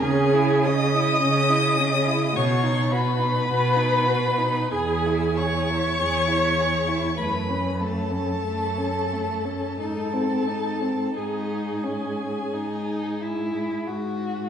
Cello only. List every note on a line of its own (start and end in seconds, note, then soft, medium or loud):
0.01 1.09 C#3 medium
1.23 2.21 C#3 medium
2.35 3.35 B2 medium
3.49 4.56 B2 medium
4.72 5.85 E2 medium
5.99 7.04 E2 medium
7.18 8.28 F#2 medium
8.44 9.62 F#2 medium
9.78 10.99 G#2 soft
11.16 12.37 G#2 medium
12.53 13.71 G#2 soft
13.86 14.49 G#2 soft